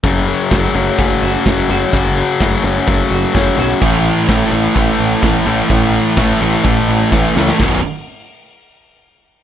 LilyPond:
<<
  \new Staff \with { instrumentName = "Clean electric guitar" } { \time 4/4 \key fis \minor \tempo 4 = 127 fis,8 fis8 a8 cis'8 a8 fis'8 cis'8 fis'8 | fis,8 fis8 a8 cis'8 a8 fis'8 cis'8 fis'8 | r1 | r1 |
r1 | }
  \new Staff \with { instrumentName = "Distorted electric guitar" } { \clef bass \time 4/4 \key fis \minor r1 | r1 | <a, e a>4 <a, e a>8 <a, e a>8 <a, e a>4 <a, e a>8 <a, e a>8 | <a, e a>4 <a, e a>8 <a, e a>8 <a, e a>4 <a, e a>8 <a, e a>8 |
<b,, fis, b,>8 r2. r8 | }
  \new Staff \with { instrumentName = "Distorted electric guitar" } { \clef bass \time 4/4 \key fis \minor <fis, cis fis>4 <fis, cis fis>8 <fis, cis fis>8 <fis, cis fis>4 <fis, cis fis>8 <fis, cis fis>8 | <fis, cis fis>4 <fis, cis fis>8 <fis, cis fis>8 <fis, cis fis>4 <fis, cis fis>8 <fis, cis fis>8 | <a, e a>4 <a, e a>8 <a, e a>8 <a, e a>4 <a, e a>8 <a, e a>8 | <a, e a>4 <a, e a>8 <a, e a>8 <a, e a>4 <a, e a>8 <a, e a>8 |
<b,, fis, b,>8 r2. r8 | }
  \new Staff \with { instrumentName = "Picked electric bass" } { \clef bass \time 4/4 \key fis \minor fis,,4 fis,,8 fis,,8 fis,,8 fis,,8 fis,,8 fis,,8 | fis,,4 fis,,8 fis,,8 fis,,8 fis,,8 fis,,8 b,,8 | a,,4 a,,8 a,,8 a,,8 a,,8 a,,8 a,,8 | a,,4 a,,8 a,,8 a,,8 a,,8 a,,8 cis,8 |
b,,,8 r2. r8 | }
  \new DrumStaff \with { instrumentName = "Drums" } \drummode { \time 4/4 <hh bd>8 hh8 <hh bd sn>8 hh8 <hh bd>8 hh8 <hh bd sn>8 hh8 | <hh bd>8 hh8 <hh bd sn>8 hh8 <hh bd>8 hh8 <hh bd sn>8 hh8 | <hh bd>8 hh8 <hh bd sn>8 hh8 <hh bd>8 hh8 <hh bd sn>8 hh8 | <hh bd>8 hh8 <hh bd sn>8 hh16 sn16 <hh bd>8 hh8 <bd sn>8 sn16 sn16 |
<hho bd sn>4 r4 r4 r4 | }
>>